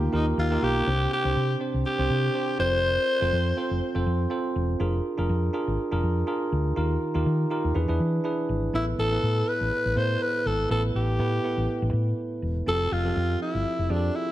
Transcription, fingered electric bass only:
0.13 0.31 D#2 medium
0.38 0.56 D#2 loud
0.62 0.81 B1 medium
0.87 1.05 C2 loud
1.25 1.33 C2 medium
1.36 1.54 C3 loud
1.74 1.82 C2 medium
1.99 2.07 C2 medium
2.10 2.28 C3 medium
2.59 2.96 F1 medium
3.22 3.30 F1 loud
3.33 3.51 F2 loud
3.71 3.79 F1 medium
3.95 4.04 F1 medium
4.06 4.25 F2 loud
4.56 4.74 E1 medium
4.80 4.98 F1 loud
5.18 5.27 F1 medium
5.29 5.48 F2 loud
5.67 5.76 G#1 medium
5.92 6.00 F1 loud
6.03 6.22 F2 medium
6.52 6.71 D2 loud
6.77 6.95 D#2 loud
7.15 7.23 D#2 loud
7.26 7.45 D#3 loud
7.64 7.73 D#2 medium
7.75 7.85 E2 loud
7.89 7.97 E2 loud
8.00 8.18 E3 loud
8.49 8.68 G#1 medium
8.74 8.92 A1 loud
8.98 9.17 A1 medium
9.23 9.41 A2 medium
9.61 9.69 A1 medium
9.85 9.94 A1 loud
9.96 10.15 A2 medium
10.46 10.64 G#1 medium
10.70 10.89 A1 loud
10.95 11.19 A1 medium
11.19 11.38 A2 medium
11.57 11.66 A1 medium
11.82 11.90 A1 medium
11.93 12.12 A2 medium
12.42 12.61 E1 medium
12.67 12.85 F1 loud
12.92 13.10 F1 medium
13.16 13.35 F2 loud
13.54 13.63 G1 medium
13.79 13.87 F1 loud
13.90 14.08 F2 medium

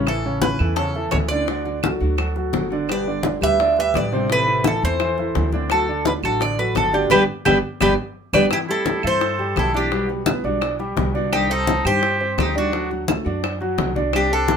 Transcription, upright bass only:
0.00 0.54 A1 medium
0.60 1.09 E2 medium
1.13 1.95 D2 medium
2.01 2.50 D2 medium
2.54 3.36 G1 medium
3.42 3.91 D2 medium
3.95 4.77 A1 medium
4.83 5.32 E2 medium
5.36 6.18 D2 medium
6.23 6.72 A1 medium
6.76 7.09 G1 medium
7.11 7.24 G1 medium
7.47 7.60 G1 medium
7.81 7.94 G1 medium
8.33 8.47 G1 medium
9.04 9.53 G2 medium
9.57 10.39 B1 medium
10.44 10.93 B1 medium
10.97 11.79 C2 medium
11.85 12.34 G2 medium
12.38 13.20 D2 medium
13.26 13.75 F#2 medium
13.78 14.57 C2 medium

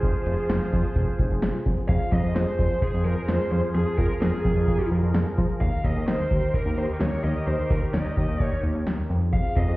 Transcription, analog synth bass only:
0.03 0.13 F1 loud
0.26 0.36 F1 loud
0.49 0.59 F1 loud
0.73 0.83 F2 loud
0.96 1.06 F1 loud
1.19 1.29 F1 loud
1.31 1.41 F1 loud
1.42 1.52 F1 loud
1.66 1.76 F1 medium
1.89 1.99 F2 loud
2.12 2.22 F2 loud
2.24 2.34 F2 loud
2.35 2.45 F2 loud
2.59 2.69 F2 loud
2.94 3.04 F2 loud
3.05 3.15 F2 loud
3.29 3.39 F2 loud
3.52 3.62 F2 medium
3.75 3.85 F2 loud
3.98 4.08 F2 loud
4.21 4.32 F2 loud
4.45 4.55 F2 loud
4.56 4.66 F2 loud
4.68 4.78 F2 loud
4.91 5.01 F2 loud
5.03 5.13 F2 medium
5.14 5.25 F2 loud
5.38 5.48 F3 loud
5.61 5.71 D#2 loud
5.84 5.94 D#2 loud
5.96 6.06 D#2 loud
6.08 6.18 D#2 loud
6.31 6.41 D#2 medium
6.66 6.76 D#2 loud
6.77 6.87 D#2 loud
7.01 7.11 D#2 loud
7.24 7.34 D#2 loud
7.47 7.57 D#2 loud
7.70 7.80 D#2 loud
7.94 8.04 D#2 loud
8.17 8.27 D#2 loud
8.28 8.38 D#2 medium
8.40 8.50 D#2 loud
8.63 8.73 D#2 loud
8.75 8.85 D#2 loud
8.87 8.97 D#2 loud
9.10 9.40 F2 loud
9.56 9.66 F2 medium
9.68 9.77 F2 loud

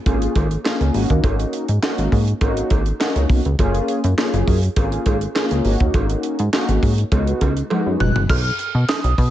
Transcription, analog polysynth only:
0.06 0.47 A#3 medium
0.06 0.47 C#4 medium
0.06 0.47 F4 medium
0.06 0.47 G#4 medium
0.65 0.93 A#3 medium
0.65 0.93 C#4 medium
0.65 0.94 F4 medium
0.65 0.95 G#4 medium
0.94 1.65 A#3 medium
0.94 1.66 C#4 medium
0.94 1.66 D#4 medium
0.94 1.66 F#4 loud
1.82 2.23 A#3 medium
1.82 2.23 C#4 medium
1.82 2.23 D#4 medium
1.82 2.23 F#4 medium
2.41 2.82 A#3 medium
2.41 2.82 C#4 medium
2.41 2.82 D#4 medium
2.41 2.82 F#4 loud
2.99 3.41 A#3 medium
2.99 3.41 C#4 medium
2.99 3.41 D#4 medium
2.99 3.41 F#4 loud
3.59 4.00 A#3 medium
3.59 4.00 C#4 loud
3.59 4.00 F4 medium
3.59 4.00 G#4 loud
4.17 4.58 A#3 medium
4.17 4.58 C#4 medium
4.17 4.58 F4 medium
4.17 4.59 G#4 medium
4.76 5.17 A#3 medium
4.76 5.17 C#4 medium
4.76 5.17 F4 medium
4.76 5.18 G#4 medium
5.35 5.63 A#3 medium
5.35 5.63 C#4 medium
5.35 5.65 F4 medium
5.35 5.65 G#4 medium
5.64 6.36 A#3 medium
5.64 6.36 C#4 medium
5.64 6.36 D#4 medium
5.64 6.36 F#4 loud
6.53 6.94 A#3 medium
6.53 6.94 C#4 medium
6.53 6.94 D#4 medium
6.53 6.94 F#4 loud
7.11 7.52 G#3 medium
7.11 7.52 B3 medium
7.11 7.53 D#4 medium
7.11 7.53 F#4 medium
7.71 8.11 G#3 medium
7.71 8.11 B3 medium
7.71 8.12 D#4 medium
7.71 8.12 F#4 medium

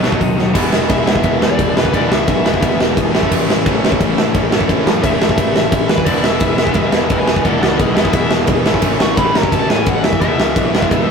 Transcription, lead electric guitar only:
0.91 1.41 E5 loud
1.42 1.76 D5 loud
1.77 1.93 B4 medium
1.95 2.11 D5 medium
2.12 2.78 E5 loud
5.03 5.53 E5 loud
5.56 5.89 E5 loud
5.90 6.06 B4 loud
6.05 6.24 D5 loud
6.24 6.91 E5 loud
7.12 7.27 B4 medium
7.12 7.27 G#5 loud
7.28 7.44 B4 loud
7.28 7.45 G#5 medium
7.44 7.61 D5 medium
7.44 7.61 F#5 medium
7.62 7.78 D5 medium
7.62 7.81 F#5 medium
7.80 7.95 G#4 medium
7.80 7.96 E5 loud
7.96 8.12 G#4 medium
7.96 8.13 E5 medium
8.14 8.31 E5 loud
9.01 9.17 C#6 loud
9.18 9.35 B5 loud
9.36 9.52 A#5 medium
9.52 9.69 A5 loud
9.69 9.86 G#5 loud
9.89 10.04 F#5 medium
10.05 10.20 E5 medium
10.21 11.11 E5 loud

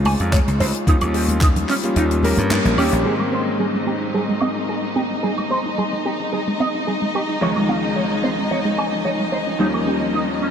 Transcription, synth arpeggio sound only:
3.05 3.16 G3 medium
3.20 3.26 G#3 medium
3.32 3.40 C4 medium
3.47 3.53 D#4 medium
3.60 3.71 G3 medium
3.75 3.81 G#3 medium
3.87 3.98 C4 medium
4.01 4.11 D#4 medium
4.15 4.25 G3 medium
4.29 4.35 G#3 medium
4.42 4.49 C4 loud
4.56 4.63 D#4 medium
4.69 4.80 G3 medium
4.84 4.90 G#3 medium
4.96 5.07 C4 medium
5.11 5.20 D#4 medium
5.24 5.35 G3 medium
5.39 5.45 G#3 medium
5.51 5.58 C4 medium
5.66 5.72 D#4 medium
5.78 5.89 G3 medium
5.93 5.99 G#3 medium
6.06 6.16 C4 medium
6.20 6.30 D#4 medium
6.33 6.44 G3 medium
6.48 6.54 G#3 medium
6.60 6.67 C4 medium
6.75 6.81 D#4 medium
6.88 6.98 G3 medium
7.02 7.08 G#3 medium
7.15 7.25 C4 loud
7.30 7.39 D#4 medium
7.42 7.53 F3 medium
7.56 7.63 G#3 medium
7.69 7.76 C4 medium
7.83 7.90 C#4 medium
7.96 8.07 F3 medium
8.11 8.17 G#3 medium
8.24 8.35 C4 medium
8.38 8.48 C#4 medium
8.51 8.62 F3 loud
8.65 8.72 G#3 medium
8.78 8.85 C4 loud
8.92 8.99 C#4 medium
9.06 9.16 F3 medium
9.20 9.26 G#3 medium
9.33 9.43 C4 medium
9.47 9.57 C#4 medium
9.60 9.71 G3 medium
9.74 9.81 A#3 medium
9.87 9.94 C#4 loud
10.01 10.08 D#4 medium
10.14 10.25 G3 medium
10.29 10.35 A#3 medium
10.41 10.51 C#4 medium

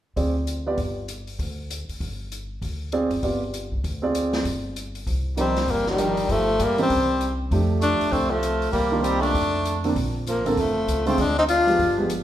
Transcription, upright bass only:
0.17 0.75 D2 medium
0.77 1.36 G1 medium
1.39 1.85 D2 medium
1.89 muted upright bass stroke soft
2.00 2.59 G1 medium
2.62 3.08 D2 medium
3.10 3.22 F#1 medium
3.22 3.69 G1 medium
3.72 3.83 C2 soft
3.84 4.42 D2 medium
4.45 5.03 G1 medium
5.07 5.65 C2 medium
5.68 6.26 G1 medium
6.29 6.57 G1 medium
6.60 6.88 G2 medium
6.90 7.48 C2 medium
7.51 7.97 F2 medium
8.00 muted upright bass stroke soft
8.12 8.70 C2 medium
8.73 9.31 C2 medium
9.35 9.93 F2 medium
9.96 10.42 A#1 medium
10.45 10.56 A1 medium
10.57 10.86 F1 medium
10.87 11.16 C#2 medium
11.18 11.76 D2 medium
11.79 12.23 G1 medium

